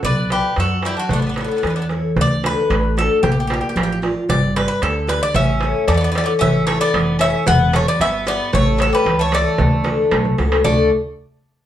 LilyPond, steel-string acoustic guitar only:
\new Staff \with { instrumentName = "Steel-string acoustic guitar" } { \time 2/4 \key d \major \tempo 4 = 113 b8 <fis' b' d''>8 fis8 <fis' b' d''>8 | a8 <e' a' cis''>8 e8 <e' a' cis''>8 | d8 <d' fis' a'>8 a8 <d' fis' a'>8 | bes8 <f' bes' d''>8 f8 <f' bes' d''>8 |
g8 <g' b' d''>8 d8 <g' b' d''>8 | a8 <e' a' cis''>8 e8 <e' a' cis''>8 | e8 <e' a' e''>8 e8 <e' a' cis''>8 | e8 <e' g' b'>8 b,8 <e' g' b'>8 |
a8 <e' a' cis''>8 e8 <e' a' cis''>8 | d8 <d' fis' a'>8 a8 <d' fis' a'>8 | <d a d' fis' a'>8 r4. | }